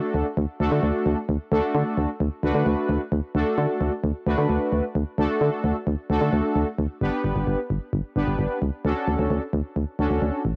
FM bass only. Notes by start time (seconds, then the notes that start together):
0.14 D2
0.37 D2
0.60 D2
0.72 D3
0.83 D2
1.06 D2
1.29 D2
1.52 D2
1.75 D3
1.97 D2
2.20 D2
2.43 D2
2.55 D3
2.66 D2
2.89 D2
3.12 D2
3.35 D2
3.58 D3
3.81 D2
4.04 D2
4.27 D2
4.38 D3
4.49 D2
4.72 D2
4.95 D2
5.18 D2
5.41 D3
5.64 D2
5.87 D2
6.10 D2
6.21 D3
6.33 D2
6.56 D2
6.79 D2
7.01 G1
7.24 G1
7.36 G1
7.47 G1
7.70 G1
7.93 G1
8.16 G1
8.27 G1
8.39 G1
8.62 C#2
8.85 D2
9.08 D2
9.19 D2
9.30 D2
9.53 D2
9.76 D2
9.99 D2
10.11 D2
10.22 D2
10.45 A1